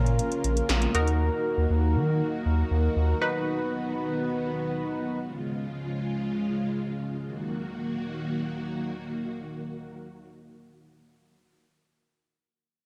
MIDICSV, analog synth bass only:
0, 0, Header, 1, 2, 480
1, 0, Start_track
1, 0, Key_signature, -6, "minor"
1, 0, Tempo, 504202
1, 1140, Time_signature, 4, 2, 24, 8
1, 12238, End_track
2, 0, Start_track
2, 0, Title_t, "Analog synth bass"
2, 0, Program_c, 0, 38
2, 0, Note_on_c, 0, 46, 95
2, 192, Note_off_c, 0, 46, 0
2, 421, Note_on_c, 0, 34, 96
2, 589, Note_off_c, 0, 34, 0
2, 661, Note_on_c, 0, 34, 106
2, 829, Note_off_c, 0, 34, 0
2, 900, Note_on_c, 0, 39, 92
2, 1237, Note_off_c, 0, 39, 0
2, 1501, Note_on_c, 0, 39, 101
2, 1585, Note_off_c, 0, 39, 0
2, 1621, Note_on_c, 0, 39, 103
2, 1861, Note_on_c, 0, 51, 101
2, 1875, Note_off_c, 0, 39, 0
2, 2113, Note_off_c, 0, 51, 0
2, 2341, Note_on_c, 0, 39, 96
2, 2509, Note_off_c, 0, 39, 0
2, 2581, Note_on_c, 0, 39, 101
2, 2749, Note_off_c, 0, 39, 0
2, 2821, Note_on_c, 0, 39, 100
2, 2989, Note_off_c, 0, 39, 0
2, 12238, End_track
0, 0, End_of_file